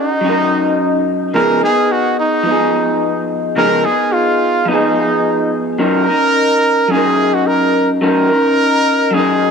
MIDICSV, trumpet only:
0, 0, Header, 1, 2, 480
1, 0, Start_track
1, 0, Key_signature, 6, "major"
1, 0, Tempo, 556586
1, 1157, Time_signature, 4, 2, 24, 8
1, 8200, End_track
2, 0, Start_track
2, 0, Title_t, "Trumpet"
2, 0, Program_c, 0, 56
2, 0, Note_on_c, 0, 63, 86
2, 889, Note_off_c, 0, 63, 0
2, 1164, Note_on_c, 0, 70, 90
2, 1384, Note_off_c, 0, 70, 0
2, 1415, Note_on_c, 0, 68, 92
2, 1654, Note_on_c, 0, 66, 89
2, 1667, Note_off_c, 0, 68, 0
2, 1886, Note_off_c, 0, 66, 0
2, 1896, Note_on_c, 0, 63, 84
2, 2812, Note_off_c, 0, 63, 0
2, 3086, Note_on_c, 0, 70, 97
2, 3322, Note_on_c, 0, 68, 97
2, 3335, Note_off_c, 0, 70, 0
2, 3560, Note_on_c, 0, 65, 89
2, 3573, Note_off_c, 0, 68, 0
2, 4040, Note_on_c, 0, 63, 82
2, 4053, Note_off_c, 0, 65, 0
2, 4759, Note_off_c, 0, 63, 0
2, 5001, Note_on_c, 0, 70, 104
2, 5960, Note_on_c, 0, 68, 93
2, 5972, Note_off_c, 0, 70, 0
2, 6332, Note_on_c, 0, 66, 78
2, 6345, Note_off_c, 0, 68, 0
2, 6441, Note_on_c, 0, 70, 94
2, 6454, Note_off_c, 0, 66, 0
2, 6811, Note_off_c, 0, 70, 0
2, 6923, Note_on_c, 0, 70, 105
2, 7881, Note_on_c, 0, 68, 100
2, 7894, Note_off_c, 0, 70, 0
2, 8200, Note_off_c, 0, 68, 0
2, 8200, End_track
0, 0, End_of_file